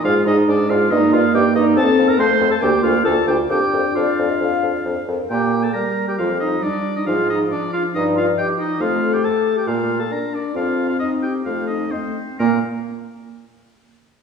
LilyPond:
<<
  \new Staff \with { instrumentName = "Oboe" } { \time 4/4 \key bes \major \tempo 4 = 135 f''8 ees''8 d''8 f''8 ees''8 f''8 g''8 ees''8 | a''8. bes''16 c'''8. a''16 g''8 f''8 a''8 g''8 | g''4 f''2~ f''8 r8 | g''8. a''16 bes''8. g''16 f''8 ees''8 d''8. ees''16 |
f''8 ees''8 d''8 f''8 ees''8 f''8 g''8 ees''8 | f''8. g''16 a''8. g''16 f''8. a''16 bes''8 d''8 | f''8. f''16 ees''8 g''8 f''8 ees''8 c''4 | bes'8 r2. r8 | }
  \new Staff \with { instrumentName = "Flute" } { \time 4/4 \key bes \major d''8 d''8 d''8 d''8 ees''8 ees''8 ees''8 ees''8 | c''8 c''8 c''8 c''8 bes'8 bes'8 bes'8 bes'8 | bes'8 bes'8 d''8. ees''16 f''8. d''16 c''8 bes'8 | r4 d''4 r4 d''4 |
r4 d''4 r4 ees''4 | r4 c''4 r4 d''4 | r4 ees''4 r4 ees''4 | f'8 r2. r8 | }
  \new Staff \with { instrumentName = "Clarinet" } { \time 4/4 \key bes \major f'8 ees'8 d'8 f'8 ees'8 f'8 g'8 ees'8 | a'8. bes'16 c''8. a'16 g'8 f'8 a'8 g'8 | g'4 f'2~ f'8 r8 | g'8. a'16 bes'8. g'16 f'8 ees'8 d'8. ees'16 |
f'8 ees'8 d'8 f'8 ees'8 f'8 g'8 ees'8 | f'8. g'16 a'8. g'16 f'8. a'16 bes'8 d'8 | f'8. f'16 ees'8 g'8 f'8 ees'8 c'4 | bes8 r2. r8 | }
  \new Staff \with { instrumentName = "French horn" } { \time 4/4 \key bes \major aes2 bes2 | c'4 a4 bes4 f'4 | d'2.~ d'8 r8 | bes4 g4 f4 g4 |
f1 | a2 bes4 d'4 | c'2 a4 a8 r8 | bes8 r2. r8 | }
  \new Staff \with { instrumentName = "Bassoon" } { \clef bass \time 4/4 \key bes \major aes,8 aes,8 aes,8 aes,8 g,8 g,8 g,8 g,8 | f,8 f,8 f,8 f,8 d,8 d,8 d,8 d,8 | f,8 f,8 f,8 f,8 f,8 f,8 f,8 f,8 | bes,4 r4 f,4 r4 |
aes,4 r4 g,4 r4 | f,4 r4 bes,4 r4 | f,4 r4 f,4 r4 | bes,8 r2. r8 | }
>>